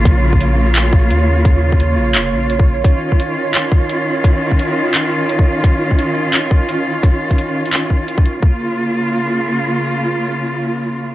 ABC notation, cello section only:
X:1
M:4/4
L:1/8
Q:"Swing 16ths" 1/4=172
K:Bbm
V:1 name="Cello section"
[D,B,F]8- | [D,B,F]8 | [E,DF]8- | [E,DF]8- |
[E,DF]8- | [E,DF]8 | [D,B,F]8- | [D,B,F]8 |]